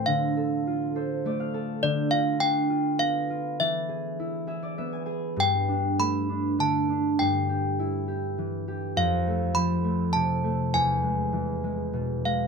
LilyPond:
<<
  \new Staff \with { instrumentName = "Handbells" } { \time 3/4 \key e \phrygian \tempo 4 = 101 f''2 r4 | d''8 f''8 g''4 f''4 | e''2 r4 | g''4 b''4 a''4 |
g''2 r4 | f''4 b''4 a''4 | gis''2~ gis''8 f''8 | }
  \new Staff \with { instrumentName = "Harp" } { \time 3/4 \key e \phrygian r4. c''8 d''16 f''16 a''8 | r2. | r4. e''16 d''16 e''16 gis''16 gis''8 | r2. |
r2. | r2. | r2. | }
  \new Staff \with { instrumentName = "Harp" } { \time 3/4 \key e \phrygian d8 a'8 f'8 a'8 a8 a'8 | d8 f'8 d'8 f'8 b8 f'8 | e8 gis'8 e'8 gis'8 b8 gis'8 | g,8 d'8 a8 d'8 d8 d'8 |
g,8 g'8 e'8 g'8 e8 g'8 | f,8 a8 f8 a8 c8 a8 | e,8 gis8 e8 gis8 b,8 gis8 | }
>>